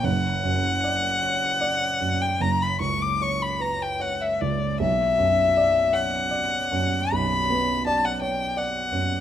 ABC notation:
X:1
M:12/8
L:1/16
Q:3/8=51
K:Bm
V:1 name="Violin"
f8- f3 g ^a b c' d' c' b a g f e d2 | e6 f6 b4 a f g2 f4 |]
V:2 name="Grand piano"
F,,,2 F,,2 d2 c2 d2 F,,2 F,,,2 C,,2 c2 B2 c2 C,,2 | B,,,2 F,,2 d2 c2 d2 F,,2 B,,,2 B,2 d2 c2 d2 F,,2 |]